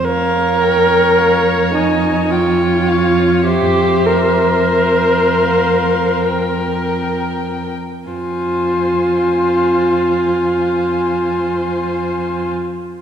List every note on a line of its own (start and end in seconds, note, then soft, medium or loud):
0.04 7.70 F2 soft
0.04 1.73 A#4 medium
0.04 2.28 C#5 soft
0.04 0.63 F5 soft
0.61 1.19 G5 soft
1.18 1.74 F5 soft
1.74 2.32 D#4 soft
1.74 2.32 G#5 soft
2.30 3.45 F4 soft
2.30 3.48 C#5 soft
2.30 2.90 G5 soft
2.88 3.46 F5 soft
3.45 4.07 G4 medium
3.45 6.28 C5 soft
3.45 4.70 E5 soft
4.06 7.17 A#4 medium
4.73 5.47 E5 soft
5.45 6.26 F5 soft
6.27 7.75 A#4 soft
6.27 7.72 G5 soft
8.07 12.46 F2 soft
8.07 12.49 F4 soft
8.07 12.48 G#5 soft
8.13 12.52 C5 soft